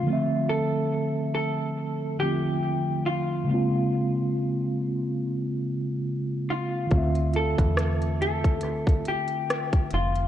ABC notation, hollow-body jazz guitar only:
X:1
M:4/4
L:1/8
Q:"Swing 16ths" 1/4=70
K:Dm
V:1 name="Hollow-body jazz guitar"
F A2 A2 G2 F- | F4- F z2 F- | F A2 A2 G2 F |]